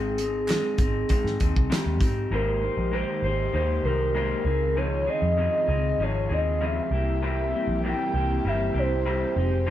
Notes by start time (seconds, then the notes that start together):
Already playing: G#1 G#3 C4 D#4 G#4
0.18 C4 D#4, closed hi-hat
0.48 G#3 C4 D#4, snare, clap, closed hi-hat
0.78 G#1 D#4, kick, closed hi-hat
0.82 C4
1.09 G#3 C4 D#4, kick, closed hi-hat
1.24 G#2, snare
1.40 D#2 C4 D#4, kick, closed hi-hat
1.56 C2, kick
1.70 G#3 C4 D#4 G4, muted picked electric bass stroke, snare, clap, closed hi-hat
1.86 D#2
2.01 G#2 C4 D#4 G4, kick, closed hi-hat
2.31 G#1 D#3 G#3 A#3 D#4 G4 A#4 C5
2.62 D#4 G4 C5
2.77 A#1
2.91 G#3 A#3 D#4 G4 C5
3.22 G#1 D#4 G4 C5
3.53 D#2 A#3 D#4 G4 C5
3.84 C2 D#4 G4 A#4 C5
4.15 G#3 A#3 D#4 G4 C5
4.45 C#2 C#3 C4 D#4 F4 G#4
4.76 C#3 F3 D#4 G#4 C#5
5.06 C4 D#4 G#4 D#5
5.22 F2
5.37 C#3 F3 C4 D#4 G#4
5.68 C#2 C4 D#4 G#4
5.98 G#1 F3 D#4
6.03 G#4 C#5
6.29 D#2 C4 D#4 G#4
6.33 D#5
6.61 C#3 F3 C4 G#4
6.65 E5
6.91 C2 E3 G3 A#3 C4 E4 G4
6.95 A#3
7.22 C3 G3 A#3 E4 G4 E5
7.53 A#3 E4 G4
7.67 A#1
7.84 C3 G3 A#3 E4 G4
7.88 G5
8.14 C2 A#3 E4 G4
8.45 G1 G3 A#3 E4 G4 E5
8.74 C2 A#3 E4 G4
8.79 C5
9.05 C3 G3 A#3 E4 G4
9.35 F1 F3 G#3 D#4 G4
9.66 F3 G#3